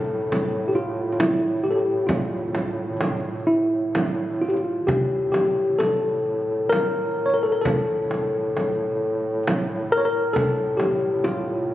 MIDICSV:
0, 0, Header, 1, 4, 480
1, 0, Start_track
1, 0, Tempo, 882353
1, 1137, Time_signature, 3, 2, 24, 8
1, 1137, Tempo, 925926
1, 4497, Tempo, 891530
1, 6205, End_track
2, 0, Start_track
2, 0, Title_t, "Tine electric piano"
2, 0, Program_c, 0, 4
2, 0, Note_on_c, 0, 69, 76
2, 370, Note_on_c, 0, 67, 54
2, 391, Note_off_c, 0, 69, 0
2, 409, Note_on_c, 0, 65, 75
2, 411, Note_off_c, 0, 67, 0
2, 607, Note_off_c, 0, 65, 0
2, 613, Note_on_c, 0, 65, 49
2, 652, Note_off_c, 0, 65, 0
2, 652, Note_on_c, 0, 64, 74
2, 889, Note_on_c, 0, 67, 71
2, 900, Note_off_c, 0, 64, 0
2, 928, Note_on_c, 0, 69, 58
2, 930, Note_off_c, 0, 67, 0
2, 955, Note_on_c, 0, 67, 63
2, 966, Note_off_c, 0, 69, 0
2, 1125, Note_on_c, 0, 65, 65
2, 1136, Note_off_c, 0, 67, 0
2, 1586, Note_off_c, 0, 65, 0
2, 1852, Note_on_c, 0, 64, 71
2, 2342, Note_on_c, 0, 65, 63
2, 2355, Note_off_c, 0, 64, 0
2, 2379, Note_on_c, 0, 67, 50
2, 2380, Note_off_c, 0, 65, 0
2, 2407, Note_on_c, 0, 65, 61
2, 2416, Note_off_c, 0, 67, 0
2, 2578, Note_on_c, 0, 67, 69
2, 2584, Note_off_c, 0, 65, 0
2, 2804, Note_off_c, 0, 67, 0
2, 2811, Note_on_c, 0, 67, 70
2, 3053, Note_on_c, 0, 69, 71
2, 3062, Note_off_c, 0, 67, 0
2, 3524, Note_on_c, 0, 70, 85
2, 3547, Note_off_c, 0, 69, 0
2, 3816, Note_on_c, 0, 73, 68
2, 3830, Note_off_c, 0, 70, 0
2, 3857, Note_on_c, 0, 70, 66
2, 3869, Note_off_c, 0, 73, 0
2, 3906, Note_on_c, 0, 69, 68
2, 3914, Note_off_c, 0, 70, 0
2, 3953, Note_on_c, 0, 70, 70
2, 3962, Note_off_c, 0, 69, 0
2, 4001, Note_on_c, 0, 69, 78
2, 4009, Note_off_c, 0, 70, 0
2, 4957, Note_off_c, 0, 69, 0
2, 5224, Note_on_c, 0, 70, 90
2, 5253, Note_on_c, 0, 73, 70
2, 5262, Note_off_c, 0, 70, 0
2, 5293, Note_off_c, 0, 73, 0
2, 5293, Note_on_c, 0, 70, 85
2, 5446, Note_on_c, 0, 69, 93
2, 5465, Note_off_c, 0, 70, 0
2, 5682, Note_on_c, 0, 67, 77
2, 5698, Note_off_c, 0, 69, 0
2, 5934, Note_on_c, 0, 65, 79
2, 5937, Note_off_c, 0, 67, 0
2, 6205, Note_off_c, 0, 65, 0
2, 6205, End_track
3, 0, Start_track
3, 0, Title_t, "Duduk"
3, 0, Program_c, 1, 69
3, 0, Note_on_c, 1, 45, 42
3, 2487, Note_off_c, 1, 45, 0
3, 2575, Note_on_c, 1, 45, 42
3, 6205, Note_off_c, 1, 45, 0
3, 6205, End_track
4, 0, Start_track
4, 0, Title_t, "Frame drum"
4, 175, Note_on_c, 9, 64, 47
4, 229, Note_off_c, 9, 64, 0
4, 653, Note_on_c, 9, 64, 59
4, 707, Note_off_c, 9, 64, 0
4, 1135, Note_on_c, 9, 64, 61
4, 1187, Note_off_c, 9, 64, 0
4, 1374, Note_on_c, 9, 64, 45
4, 1425, Note_off_c, 9, 64, 0
4, 1612, Note_on_c, 9, 64, 48
4, 1664, Note_off_c, 9, 64, 0
4, 2101, Note_on_c, 9, 64, 50
4, 2153, Note_off_c, 9, 64, 0
4, 2585, Note_on_c, 9, 64, 61
4, 2637, Note_off_c, 9, 64, 0
4, 2823, Note_on_c, 9, 64, 41
4, 2874, Note_off_c, 9, 64, 0
4, 3061, Note_on_c, 9, 64, 45
4, 3113, Note_off_c, 9, 64, 0
4, 3539, Note_on_c, 9, 64, 56
4, 3591, Note_off_c, 9, 64, 0
4, 4021, Note_on_c, 9, 64, 68
4, 4072, Note_off_c, 9, 64, 0
4, 4257, Note_on_c, 9, 64, 42
4, 4309, Note_off_c, 9, 64, 0
4, 4494, Note_on_c, 9, 64, 41
4, 4548, Note_off_c, 9, 64, 0
4, 4983, Note_on_c, 9, 64, 52
4, 5037, Note_off_c, 9, 64, 0
4, 5460, Note_on_c, 9, 64, 66
4, 5514, Note_off_c, 9, 64, 0
4, 5695, Note_on_c, 9, 64, 44
4, 5749, Note_off_c, 9, 64, 0
4, 5936, Note_on_c, 9, 64, 44
4, 5990, Note_off_c, 9, 64, 0
4, 6205, End_track
0, 0, End_of_file